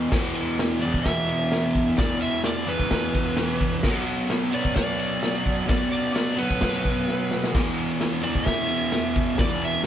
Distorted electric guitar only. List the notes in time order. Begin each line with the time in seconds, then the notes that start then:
Already playing: B2
0.10 E2 B2
0.15 E3
0.80 B2 E3
0.85 E2
1.96 E2 B2
2.02 E3
2.67 B2 E3
2.72 E2
3.83 B2 F#3
3.88 B3
4.50 F#3 B3
4.55 B2
5.66 B2 F#3
5.71 B3
6.36 F#3 B3
6.42 B2
7.52 E2 B2
7.58 E3
8.22 B2 E3
8.28 E2
9.37 E2 B2
9.42 E3